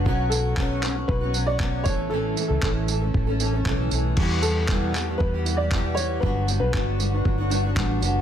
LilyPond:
<<
  \new Staff \with { instrumentName = "Upright piano" } { \time 4/4 \key e \dorian \tempo 4 = 117 r8 a'4. b'8. d''8. cis''8 | a'8. a'2 r4 r16 | r8 a'4. b'8. d''8. cis''8 | b'8. b'2 r4 r16 | }
  \new Staff \with { instrumentName = "Steel-string acoustic guitar" } { \time 4/4 \key e \dorian <b, fis b cis' fis'>8 <fis b cis' fis'>8 <b, fis b cis' fis'>8 <fis b cis' fis'>16 <b cis' fis'>8 <b cis' fis'>16 <fis b cis' fis'>16 <b cis' fis'>16 <b, fis b cis' fis'>8 <e a cis' a'>8 | <a, e a cis' a'>8 <e a cis' a'>8 <a, e a cis' a'>8 <e a cis' a'>16 <a cis' a'>8 <a cis' a'>16 <e a cis' a'>16 <a cis' a'>16 <a, e a cis' a'>8 <e a cis' a'>8 | <e, b, e g b g'>8 <e g b g'>8 <e, b, e g b g'>8 <e g b g'>16 <e g b g'>8 <e g b g'>16 <e g b g'>16 <e g b g'>16 <e, b, e g b g'>8 <e g b g'>8 | <g b d' fis'>8 <g b d' fis'>8 <g b d' fis'>8 <g b d' fis'>16 <b d' fis'>8 <b d' fis'>16 <g b d' fis'>16 <b d' fis'>16 <g b d' fis'>8 <g b d' fis'>8 | }
  \new Staff \with { instrumentName = "Nylon-string guitar" } { \clef bass \time 4/4 \key e \dorian fis8 b8 fis8 b8 fis4 b8 e8 | e8 a8 e8 a8 e8 cis'8 a8 e8 | g8 b4 b8 g8 e'8 b8 g8 | fis8 b8 fis8 b8 fis8 d'8 b8 fis8 | }
  \new Staff \with { instrumentName = "Fingered electric bass" } { \clef bass \time 4/4 \key e \dorian b,,2 b,,4. a,,8~ | a,,8 r16 cis,16 a,,4 a,,4 b,,8 b,,8 | e,2 e,2 | g,,8. b,,16 g,,4 g,,4 a,,8 fis,,8 | }
  \new DrumStaff \with { instrumentName = "Drums" } \drummode { \time 4/4 bd8 tamb8 <hc bd>8 <hc tamb>8 bd8 tamb8 <hc bd>8 <bd tamb>8 | r8 tamb8 <hc bd>8 tamb8 bd8 tamb8 <hc bd>8 tamb8 | <cymc bd>8 tamb8 <hc bd>8 <hc tamb>8 bd8 tamb8 <hc bd>8 tamb8 | bd8 tamb8 <hc bd>8 tamb8 bd8 tamb8 <hc bd>8 tamb8 | }
>>